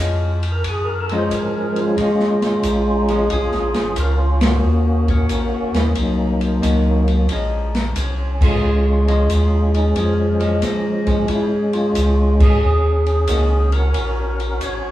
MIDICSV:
0, 0, Header, 1, 5, 480
1, 0, Start_track
1, 0, Key_signature, -5, "minor"
1, 0, Tempo, 664452
1, 1430, Time_signature, 4, 2, 24, 8
1, 10773, End_track
2, 0, Start_track
2, 0, Title_t, "Tonewheel organ"
2, 0, Program_c, 0, 16
2, 375, Note_on_c, 0, 70, 80
2, 459, Note_off_c, 0, 70, 0
2, 491, Note_on_c, 0, 68, 77
2, 610, Note_on_c, 0, 70, 99
2, 639, Note_off_c, 0, 68, 0
2, 727, Note_on_c, 0, 69, 90
2, 778, Note_off_c, 0, 70, 0
2, 808, Note_on_c, 0, 53, 59
2, 811, Note_on_c, 0, 56, 55
2, 819, Note_on_c, 0, 61, 81
2, 835, Note_off_c, 0, 69, 0
2, 853, Note_on_c, 0, 72, 92
2, 938, Note_off_c, 0, 72, 0
2, 970, Note_on_c, 0, 70, 69
2, 1258, Note_off_c, 0, 61, 0
2, 1296, Note_off_c, 0, 56, 0
2, 1300, Note_on_c, 0, 61, 63
2, 1305, Note_on_c, 0, 56, 66
2, 1305, Note_on_c, 0, 65, 108
2, 1335, Note_off_c, 0, 70, 0
2, 1408, Note_off_c, 0, 53, 0
2, 2374, Note_off_c, 0, 61, 0
2, 2376, Note_off_c, 0, 56, 0
2, 2396, Note_off_c, 0, 65, 0
2, 2402, Note_on_c, 0, 68, 94
2, 2405, Note_on_c, 0, 61, 67
2, 2405, Note_on_c, 0, 65, 70
2, 2847, Note_off_c, 0, 68, 0
2, 2887, Note_on_c, 0, 70, 92
2, 3029, Note_off_c, 0, 70, 0
2, 3211, Note_off_c, 0, 61, 0
2, 3219, Note_on_c, 0, 66, 95
2, 3220, Note_on_c, 0, 61, 71
2, 3224, Note_on_c, 0, 58, 70
2, 3328, Note_off_c, 0, 65, 0
2, 3658, Note_off_c, 0, 66, 0
2, 3678, Note_off_c, 0, 61, 0
2, 3679, Note_off_c, 0, 58, 0
2, 3684, Note_on_c, 0, 66, 92
2, 3687, Note_on_c, 0, 58, 66
2, 3687, Note_on_c, 0, 61, 68
2, 4165, Note_on_c, 0, 64, 88
2, 4173, Note_off_c, 0, 66, 0
2, 4233, Note_off_c, 0, 64, 0
2, 4316, Note_off_c, 0, 58, 0
2, 4321, Note_on_c, 0, 63, 75
2, 4324, Note_on_c, 0, 58, 54
2, 4325, Note_on_c, 0, 54, 55
2, 4612, Note_off_c, 0, 61, 0
2, 5091, Note_off_c, 0, 63, 0
2, 5248, Note_off_c, 0, 58, 0
2, 5249, Note_off_c, 0, 54, 0
2, 5764, Note_on_c, 0, 61, 83
2, 6082, Note_off_c, 0, 61, 0
2, 6084, Note_on_c, 0, 65, 92
2, 6087, Note_on_c, 0, 56, 66
2, 6091, Note_on_c, 0, 61, 70
2, 6531, Note_off_c, 0, 65, 0
2, 6554, Note_off_c, 0, 56, 0
2, 6559, Note_off_c, 0, 61, 0
2, 6559, Note_on_c, 0, 65, 87
2, 6563, Note_on_c, 0, 56, 68
2, 6567, Note_on_c, 0, 61, 65
2, 7009, Note_off_c, 0, 65, 0
2, 7045, Note_on_c, 0, 63, 87
2, 7113, Note_off_c, 0, 63, 0
2, 7193, Note_off_c, 0, 61, 0
2, 7201, Note_off_c, 0, 56, 0
2, 7202, Note_on_c, 0, 61, 90
2, 7209, Note_on_c, 0, 56, 67
2, 7212, Note_on_c, 0, 53, 67
2, 8132, Note_off_c, 0, 56, 0
2, 8133, Note_off_c, 0, 53, 0
2, 8156, Note_on_c, 0, 64, 87
2, 8159, Note_off_c, 0, 61, 0
2, 8164, Note_on_c, 0, 56, 66
2, 8167, Note_on_c, 0, 61, 62
2, 8301, Note_off_c, 0, 64, 0
2, 8475, Note_on_c, 0, 65, 103
2, 8482, Note_off_c, 0, 56, 0
2, 8484, Note_off_c, 0, 61, 0
2, 8490, Note_on_c, 0, 56, 64
2, 8493, Note_on_c, 0, 61, 66
2, 8928, Note_off_c, 0, 65, 0
2, 8964, Note_on_c, 0, 68, 100
2, 8973, Note_off_c, 0, 61, 0
2, 8982, Note_on_c, 0, 61, 68
2, 9091, Note_off_c, 0, 56, 0
2, 9893, Note_off_c, 0, 68, 0
2, 9902, Note_off_c, 0, 61, 0
2, 9914, Note_on_c, 0, 70, 117
2, 9941, Note_on_c, 0, 66, 72
2, 9943, Note_on_c, 0, 61, 74
2, 10556, Note_on_c, 0, 73, 94
2, 10572, Note_off_c, 0, 70, 0
2, 10773, Note_off_c, 0, 61, 0
2, 10773, Note_off_c, 0, 66, 0
2, 10773, Note_off_c, 0, 73, 0
2, 10773, End_track
3, 0, Start_track
3, 0, Title_t, "Hollow-body jazz guitar"
3, 0, Program_c, 1, 26
3, 0, Note_on_c, 1, 56, 52
3, 0, Note_on_c, 1, 61, 61
3, 2, Note_on_c, 1, 65, 57
3, 282, Note_off_c, 1, 56, 0
3, 285, Note_off_c, 1, 61, 0
3, 289, Note_off_c, 1, 65, 0
3, 807, Note_on_c, 1, 56, 62
3, 811, Note_on_c, 1, 61, 66
3, 815, Note_on_c, 1, 65, 75
3, 941, Note_off_c, 1, 56, 0
3, 943, Note_off_c, 1, 61, 0
3, 945, Note_off_c, 1, 65, 0
3, 1435, Note_on_c, 1, 53, 57
3, 1442, Note_on_c, 1, 56, 58
3, 1449, Note_on_c, 1, 61, 66
3, 1724, Note_off_c, 1, 53, 0
3, 1728, Note_off_c, 1, 56, 0
3, 1731, Note_off_c, 1, 61, 0
3, 2239, Note_on_c, 1, 53, 75
3, 2244, Note_on_c, 1, 56, 79
3, 2249, Note_on_c, 1, 61, 85
3, 2841, Note_off_c, 1, 53, 0
3, 2843, Note_off_c, 1, 56, 0
3, 2846, Note_off_c, 1, 61, 0
3, 4785, Note_on_c, 1, 51, 61
3, 4785, Note_on_c, 1, 58, 58
3, 4789, Note_on_c, 1, 61, 67
3, 4792, Note_on_c, 1, 66, 63
3, 5267, Note_off_c, 1, 58, 0
3, 5268, Note_off_c, 1, 51, 0
3, 5269, Note_off_c, 1, 61, 0
3, 5271, Note_off_c, 1, 66, 0
3, 5276, Note_on_c, 1, 53, 65
3, 5286, Note_on_c, 1, 61, 70
3, 5287, Note_on_c, 1, 56, 72
3, 5565, Note_off_c, 1, 53, 0
3, 5570, Note_off_c, 1, 56, 0
3, 5570, Note_off_c, 1, 61, 0
3, 6560, Note_on_c, 1, 53, 67
3, 6562, Note_on_c, 1, 56, 74
3, 6567, Note_on_c, 1, 61, 74
3, 6697, Note_off_c, 1, 53, 0
3, 6698, Note_off_c, 1, 56, 0
3, 6701, Note_off_c, 1, 61, 0
3, 7512, Note_on_c, 1, 53, 79
3, 7521, Note_on_c, 1, 56, 81
3, 7525, Note_on_c, 1, 61, 77
3, 7654, Note_off_c, 1, 53, 0
3, 7658, Note_off_c, 1, 56, 0
3, 7661, Note_off_c, 1, 61, 0
3, 7999, Note_on_c, 1, 56, 68
3, 8001, Note_on_c, 1, 53, 72
3, 8005, Note_on_c, 1, 61, 75
3, 8138, Note_off_c, 1, 56, 0
3, 8139, Note_off_c, 1, 53, 0
3, 8141, Note_off_c, 1, 61, 0
3, 9599, Note_on_c, 1, 51, 64
3, 9602, Note_on_c, 1, 61, 57
3, 9603, Note_on_c, 1, 58, 63
3, 9604, Note_on_c, 1, 66, 65
3, 9888, Note_off_c, 1, 51, 0
3, 9890, Note_off_c, 1, 61, 0
3, 9891, Note_off_c, 1, 58, 0
3, 9891, Note_off_c, 1, 66, 0
3, 10773, End_track
4, 0, Start_track
4, 0, Title_t, "Tonewheel organ"
4, 0, Program_c, 2, 16
4, 0, Note_on_c, 2, 41, 83
4, 454, Note_off_c, 2, 41, 0
4, 466, Note_on_c, 2, 42, 85
4, 933, Note_off_c, 2, 42, 0
4, 945, Note_on_c, 2, 44, 91
4, 1413, Note_off_c, 2, 44, 0
4, 1423, Note_on_c, 2, 46, 81
4, 1892, Note_off_c, 2, 46, 0
4, 1902, Note_on_c, 2, 34, 84
4, 2371, Note_off_c, 2, 34, 0
4, 2386, Note_on_c, 2, 36, 85
4, 2543, Note_off_c, 2, 36, 0
4, 2543, Note_on_c, 2, 34, 55
4, 2694, Note_on_c, 2, 32, 59
4, 2706, Note_off_c, 2, 34, 0
4, 2850, Note_off_c, 2, 32, 0
4, 2864, Note_on_c, 2, 37, 86
4, 3332, Note_off_c, 2, 37, 0
4, 3342, Note_on_c, 2, 39, 85
4, 3811, Note_off_c, 2, 39, 0
4, 3824, Note_on_c, 2, 34, 83
4, 3982, Note_off_c, 2, 34, 0
4, 3983, Note_on_c, 2, 30, 56
4, 4136, Note_on_c, 2, 39, 68
4, 4146, Note_off_c, 2, 30, 0
4, 4291, Note_off_c, 2, 39, 0
4, 4304, Note_on_c, 2, 36, 83
4, 4772, Note_off_c, 2, 36, 0
4, 4785, Note_on_c, 2, 37, 88
4, 5253, Note_off_c, 2, 37, 0
4, 5265, Note_on_c, 2, 34, 88
4, 5733, Note_off_c, 2, 34, 0
4, 5745, Note_on_c, 2, 36, 87
4, 6213, Note_off_c, 2, 36, 0
4, 6236, Note_on_c, 2, 37, 83
4, 6699, Note_off_c, 2, 37, 0
4, 6710, Note_on_c, 2, 39, 89
4, 7176, Note_off_c, 2, 39, 0
4, 7195, Note_on_c, 2, 41, 79
4, 7659, Note_off_c, 2, 41, 0
4, 7672, Note_on_c, 2, 46, 84
4, 8138, Note_off_c, 2, 46, 0
4, 8149, Note_on_c, 2, 44, 83
4, 8616, Note_off_c, 2, 44, 0
4, 8636, Note_on_c, 2, 37, 88
4, 9100, Note_off_c, 2, 37, 0
4, 9122, Note_on_c, 2, 39, 83
4, 9584, Note_off_c, 2, 39, 0
4, 9594, Note_on_c, 2, 37, 87
4, 10060, Note_off_c, 2, 37, 0
4, 10075, Note_on_c, 2, 34, 80
4, 10541, Note_off_c, 2, 34, 0
4, 10556, Note_on_c, 2, 32, 89
4, 10773, Note_off_c, 2, 32, 0
4, 10773, End_track
5, 0, Start_track
5, 0, Title_t, "Drums"
5, 308, Note_on_c, 9, 51, 50
5, 381, Note_off_c, 9, 51, 0
5, 463, Note_on_c, 9, 51, 71
5, 467, Note_on_c, 9, 36, 23
5, 536, Note_off_c, 9, 51, 0
5, 539, Note_off_c, 9, 36, 0
5, 789, Note_on_c, 9, 51, 46
5, 861, Note_off_c, 9, 51, 0
5, 946, Note_on_c, 9, 36, 23
5, 947, Note_on_c, 9, 44, 63
5, 947, Note_on_c, 9, 51, 72
5, 1019, Note_off_c, 9, 36, 0
5, 1019, Note_off_c, 9, 44, 0
5, 1019, Note_off_c, 9, 51, 0
5, 1272, Note_on_c, 9, 51, 49
5, 1344, Note_off_c, 9, 51, 0
5, 1426, Note_on_c, 9, 36, 24
5, 1427, Note_on_c, 9, 51, 59
5, 1499, Note_off_c, 9, 36, 0
5, 1500, Note_off_c, 9, 51, 0
5, 1587, Note_on_c, 9, 38, 30
5, 1660, Note_off_c, 9, 38, 0
5, 1745, Note_on_c, 9, 38, 41
5, 1749, Note_on_c, 9, 51, 44
5, 1817, Note_off_c, 9, 38, 0
5, 1821, Note_off_c, 9, 51, 0
5, 1902, Note_on_c, 9, 44, 54
5, 1902, Note_on_c, 9, 51, 66
5, 1904, Note_on_c, 9, 36, 21
5, 1974, Note_off_c, 9, 44, 0
5, 1974, Note_off_c, 9, 51, 0
5, 1976, Note_off_c, 9, 36, 0
5, 2228, Note_on_c, 9, 51, 47
5, 2300, Note_off_c, 9, 51, 0
5, 2383, Note_on_c, 9, 51, 66
5, 2384, Note_on_c, 9, 36, 27
5, 2455, Note_off_c, 9, 51, 0
5, 2456, Note_off_c, 9, 36, 0
5, 2541, Note_on_c, 9, 38, 28
5, 2614, Note_off_c, 9, 38, 0
5, 2703, Note_on_c, 9, 51, 45
5, 2705, Note_on_c, 9, 38, 45
5, 2776, Note_off_c, 9, 51, 0
5, 2777, Note_off_c, 9, 38, 0
5, 2861, Note_on_c, 9, 44, 57
5, 2861, Note_on_c, 9, 51, 71
5, 2864, Note_on_c, 9, 36, 18
5, 2933, Note_off_c, 9, 44, 0
5, 2933, Note_off_c, 9, 51, 0
5, 2936, Note_off_c, 9, 36, 0
5, 3186, Note_on_c, 9, 51, 70
5, 3188, Note_on_c, 9, 38, 78
5, 3258, Note_off_c, 9, 51, 0
5, 3260, Note_off_c, 9, 38, 0
5, 3670, Note_on_c, 9, 36, 53
5, 3671, Note_on_c, 9, 51, 46
5, 3742, Note_off_c, 9, 36, 0
5, 3743, Note_off_c, 9, 51, 0
5, 3823, Note_on_c, 9, 44, 61
5, 3823, Note_on_c, 9, 51, 69
5, 3826, Note_on_c, 9, 36, 24
5, 3895, Note_off_c, 9, 44, 0
5, 3895, Note_off_c, 9, 51, 0
5, 3898, Note_off_c, 9, 36, 0
5, 4149, Note_on_c, 9, 51, 48
5, 4151, Note_on_c, 9, 38, 57
5, 4221, Note_off_c, 9, 51, 0
5, 4223, Note_off_c, 9, 38, 0
5, 4301, Note_on_c, 9, 51, 61
5, 4305, Note_on_c, 9, 36, 23
5, 4373, Note_off_c, 9, 51, 0
5, 4378, Note_off_c, 9, 36, 0
5, 4630, Note_on_c, 9, 51, 47
5, 4702, Note_off_c, 9, 51, 0
5, 4788, Note_on_c, 9, 36, 27
5, 4789, Note_on_c, 9, 44, 53
5, 4789, Note_on_c, 9, 51, 66
5, 4860, Note_off_c, 9, 36, 0
5, 4862, Note_off_c, 9, 44, 0
5, 4862, Note_off_c, 9, 51, 0
5, 5112, Note_on_c, 9, 51, 45
5, 5184, Note_off_c, 9, 51, 0
5, 5264, Note_on_c, 9, 51, 61
5, 5268, Note_on_c, 9, 36, 24
5, 5336, Note_off_c, 9, 51, 0
5, 5340, Note_off_c, 9, 36, 0
5, 5595, Note_on_c, 9, 51, 46
5, 5598, Note_on_c, 9, 38, 55
5, 5668, Note_off_c, 9, 51, 0
5, 5670, Note_off_c, 9, 38, 0
5, 5748, Note_on_c, 9, 44, 57
5, 5748, Note_on_c, 9, 51, 68
5, 5750, Note_on_c, 9, 36, 18
5, 5820, Note_off_c, 9, 44, 0
5, 5820, Note_off_c, 9, 51, 0
5, 5822, Note_off_c, 9, 36, 0
5, 6075, Note_on_c, 9, 36, 89
5, 6078, Note_on_c, 9, 49, 77
5, 6147, Note_off_c, 9, 36, 0
5, 6151, Note_off_c, 9, 49, 0
5, 6561, Note_on_c, 9, 51, 48
5, 6633, Note_off_c, 9, 51, 0
5, 6712, Note_on_c, 9, 36, 23
5, 6715, Note_on_c, 9, 44, 51
5, 6715, Note_on_c, 9, 51, 64
5, 6784, Note_off_c, 9, 36, 0
5, 6787, Note_off_c, 9, 44, 0
5, 6787, Note_off_c, 9, 51, 0
5, 7039, Note_on_c, 9, 51, 48
5, 7111, Note_off_c, 9, 51, 0
5, 7192, Note_on_c, 9, 36, 25
5, 7192, Note_on_c, 9, 51, 65
5, 7264, Note_off_c, 9, 51, 0
5, 7265, Note_off_c, 9, 36, 0
5, 7516, Note_on_c, 9, 51, 44
5, 7588, Note_off_c, 9, 51, 0
5, 7670, Note_on_c, 9, 44, 53
5, 7670, Note_on_c, 9, 51, 67
5, 7672, Note_on_c, 9, 36, 20
5, 7673, Note_on_c, 9, 38, 37
5, 7743, Note_off_c, 9, 44, 0
5, 7743, Note_off_c, 9, 51, 0
5, 7745, Note_off_c, 9, 36, 0
5, 7745, Note_off_c, 9, 38, 0
5, 7994, Note_on_c, 9, 51, 48
5, 7996, Note_on_c, 9, 36, 56
5, 8066, Note_off_c, 9, 51, 0
5, 8069, Note_off_c, 9, 36, 0
5, 8149, Note_on_c, 9, 51, 61
5, 8152, Note_on_c, 9, 36, 27
5, 8221, Note_off_c, 9, 51, 0
5, 8224, Note_off_c, 9, 36, 0
5, 8475, Note_on_c, 9, 51, 48
5, 8547, Note_off_c, 9, 51, 0
5, 8633, Note_on_c, 9, 44, 63
5, 8633, Note_on_c, 9, 51, 69
5, 8634, Note_on_c, 9, 36, 22
5, 8705, Note_off_c, 9, 44, 0
5, 8705, Note_off_c, 9, 51, 0
5, 8707, Note_off_c, 9, 36, 0
5, 8959, Note_on_c, 9, 36, 85
5, 8959, Note_on_c, 9, 49, 74
5, 9031, Note_off_c, 9, 36, 0
5, 9031, Note_off_c, 9, 49, 0
5, 9437, Note_on_c, 9, 51, 46
5, 9509, Note_off_c, 9, 51, 0
5, 9589, Note_on_c, 9, 44, 60
5, 9589, Note_on_c, 9, 51, 71
5, 9594, Note_on_c, 9, 36, 26
5, 9661, Note_off_c, 9, 44, 0
5, 9661, Note_off_c, 9, 51, 0
5, 9666, Note_off_c, 9, 36, 0
5, 9912, Note_on_c, 9, 51, 47
5, 9984, Note_off_c, 9, 51, 0
5, 10071, Note_on_c, 9, 51, 64
5, 10075, Note_on_c, 9, 36, 23
5, 10143, Note_off_c, 9, 51, 0
5, 10147, Note_off_c, 9, 36, 0
5, 10399, Note_on_c, 9, 51, 46
5, 10472, Note_off_c, 9, 51, 0
5, 10553, Note_on_c, 9, 44, 52
5, 10553, Note_on_c, 9, 51, 64
5, 10556, Note_on_c, 9, 36, 21
5, 10625, Note_off_c, 9, 44, 0
5, 10625, Note_off_c, 9, 51, 0
5, 10629, Note_off_c, 9, 36, 0
5, 10773, End_track
0, 0, End_of_file